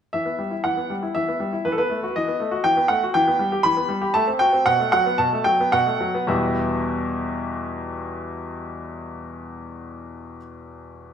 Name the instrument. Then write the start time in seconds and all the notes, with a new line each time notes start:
grand piano
0.13 E3 E5
0.26 B3
0.39 G3
0.51 E4
0.64 E3 F#5
0.77 B3
0.90 G3
1.03 E4
1.15 E3 E5
1.28 B3
1.40 G3
1.53 E4
1.65 E3 B4
1.72 A4
1.78 B3 B4
1.90 A3
2.03 F#4
2.16 E3 D#5
2.28 B3
2.40 A3
2.51 F#4
2.64 E3 G5
2.77 B3
2.88 A3 F#5
3.03 F#4
3.14 E3 G5
3.27 B3
3.39 G3
3.52 G4
3.63 E3 B5
3.77 B3
3.89 G3
4.02 G4
4.14 A3 A5
4.27 C4
4.39 F#4 G5
4.53 C4
4.66 B2 F#5
4.79 A3
4.92 F#3 F#5
5.06 B3
5.18 B2 A5
5.33 A3
5.44 F#3 G5
5.60 B3
5.72 B2 F#5
5.87 A3
6.00 F#3
6.14 B3
6.27 E2 B2 G3 B3 E4 G4 E5